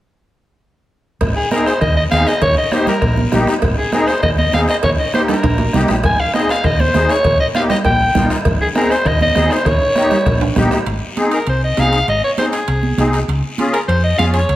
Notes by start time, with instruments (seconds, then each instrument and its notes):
1.21 fingered electric bass G#1, bombo low, bombo rim, cowbell, long guiro
1.36 soprano saxophone G#4
1.51 accordion C4 D#4 G#4, soprano saxophone A#4, bombo rim, high conga, short guiro
1.66 soprano saxophone C5, bombo rim, short guiro
1.81 fingered electric bass D#2, soprano saxophone D#5, bombo low, bombo rim, cowbell, long guiro
1.96 soprano saxophone D#5
2.11 fingered electric bass D#2, accordion C4 D#4 G#4, soprano saxophone F5, bombo rim, high conga, short guiro
2.27 soprano saxophone D#5, bombo rim, short guiro
2.41 fingered electric bass D#2, soprano saxophone C#5, bombo low, bombo rim, cowbell, long guiro
2.57 soprano saxophone D#5
2.71 accordion A#3 D#4 G4, soprano saxophone C5, bombo rim, high conga, short guiro
2.86 soprano saxophone A#4, bombo rim, low conga, short guiro
3.02 fingered electric bass A#1, bombo low, bombo rim, cowbell, long guiro
3.17 high conga
3.32 fingered electric bass A#1, accordion A#3 D#4 G4, bombo rim, high conga, low conga, low timbale, short guiro
3.47 bombo rim, short guiro
3.62 fingered electric bass G#1, bombo low, bombo rim, cowbell, long guiro
3.78 soprano saxophone G#4
3.92 accordion C4 D#4 G#4, soprano saxophone A#4, bombo rim, high conga, short guiro
4.07 soprano saxophone C5, bombo rim, short guiro
4.23 fingered electric bass D#2, soprano saxophone D#5, bombo low, bombo rim, cowbell
4.38 soprano saxophone D#5, high conga
4.52 fingered electric bass D#2, accordion C4 D#4 G#4, soprano saxophone F5, bombo rim, high conga, short guiro
4.68 soprano saxophone D#5, bombo rim, short guiro
4.83 fingered electric bass D#2, soprano saxophone C#5, bombo low, bombo rim, cowbell, long guiro
4.99 soprano saxophone D#5
5.13 accordion A#3 D#4 G4, soprano saxophone C5, bombo rim, high conga, short guiro
5.28 soprano saxophone A#4, bombo rim, low conga, high timbale, short guiro
5.43 fingered electric bass A#1, bombo low, bombo rim, cowbell, high timbale, long guiro
5.58 low timbale
5.73 fingered electric bass C2, accordion A#3 D#4 G4, bombo rim, high conga, low conga, short guiro
5.88 fingered electric bass A#1, bombo rim, low timbale, short guiro
6.04 fingered electric bass G#1, soprano saxophone G#5, bombo low, bombo rim, cowbell, long guiro
6.20 soprano saxophone F5
6.34 accordion C4 D#4 G#4, soprano saxophone D#5, bombo rim, high conga, short guiro
6.49 soprano saxophone F5, bombo rim, short guiro
6.64 fingered electric bass D#2, soprano saxophone D#5, bombo low, bombo rim, cowbell, long guiro
6.80 soprano saxophone C5, high conga
6.94 fingered electric bass D#2, accordion C4 D#4 G#4, bombo rim, high conga, low timbale, short guiro
7.09 soprano saxophone C#5, bombo rim, short guiro
7.24 fingered electric bass D#2, bombo low, bombo rim, cowbell, long guiro
7.40 soprano saxophone D#5
7.55 accordion A#3 D#4 G4, soprano saxophone F5, bombo rim, high conga, short guiro
7.70 soprano saxophone D#5, bombo rim, low conga, short guiro
7.84 fingered electric bass A#1, soprano saxophone G5, bombo low, bombo rim, cowbell, long guiro
8.15 fingered electric bass A#1, accordion A#3 D#4 F4, bombo low, bombo rim, high conga, low conga, short guiro
8.30 bombo rim, short guiro
8.45 fingered electric bass G#1, bombo low, bombo rim, cowbell, long guiro
8.61 soprano saxophone G#4
8.75 accordion C4 D#4 G#4, soprano saxophone A#4, bombo rim, high conga, short guiro
8.90 soprano saxophone C5, bombo rim, short guiro
9.05 fingered electric bass D#2, soprano saxophone D#5, bombo low, bombo rim, cowbell, long guiro
9.21 soprano saxophone D#5, high conga
9.35 fingered electric bass D#2, accordion C4 D#4 G#4, bombo rim, high conga, low timbale, short guiro
9.50 soprano saxophone C5, bombo rim, short guiro
9.65 fingered electric bass D#2, soprano saxophone C#5, bombo low, bombo rim, cowbell, long guiro
9.96 accordion A#3 D#4 G4, bombo rim, high conga, short guiro
10.11 bombo rim, low conga, short guiro
10.26 fingered electric bass A#1, bombo low, bombo rim, cowbell, long guiro
10.41 high timbale
10.56 fingered electric bass A#1, accordion A#3 D#4 G4, bombo low, bombo rim, high conga, low conga, high timbale, short guiro
10.71 bombo rim, low timbale, short guiro
10.86 fingered electric bass G#1, high timbale, long guiro
11.17 accordion C4 D#4 G#4, high conga, high timbale, short guiro
11.32 soprano saxophone A#4, high timbale, short guiro
11.47 fingered electric bass C2, soprano saxophone C5, high timbale, long guiro
11.64 soprano saxophone D#5
11.77 fingered electric bass C2, accordion C4 D#4 G#4, soprano saxophone F5, high conga, high timbale, low timbale, short guiro
11.93 high timbale, short guiro
12.07 fingered electric bass G#1, soprano saxophone D#5, high timbale, long guiro
12.24 soprano saxophone C#5
12.38 accordion C4 D#4 G#4, soprano saxophone C5, high conga, high timbale, short guiro
12.52 soprano saxophone G#4, high timbale, short guiro
12.68 fingered electric bass C2, high timbale, long guiro
12.83 high conga
12.98 fingered electric bass C2, accordion C4 D#4 G#4, high conga, high timbale, low timbale, short guiro
13.13 high timbale, short guiro
13.28 fingered electric bass C#2, high timbale, long guiro
13.58 accordion C#4 F4 G#4, high conga, high timbale, short guiro
13.73 soprano saxophone A#4, high timbale, short guiro
13.88 fingered electric bass F2, soprano saxophone C5, high timbale, long guiro
14.04 soprano saxophone D#5
14.18 fingered electric bass F2, accordion C#4 F4 G#4, soprano saxophone F5, high conga, high timbale, short guiro
14.33 soprano saxophone C#5, high timbale, short guiro
14.49 fingered electric bass C#2, high timbale, long guiro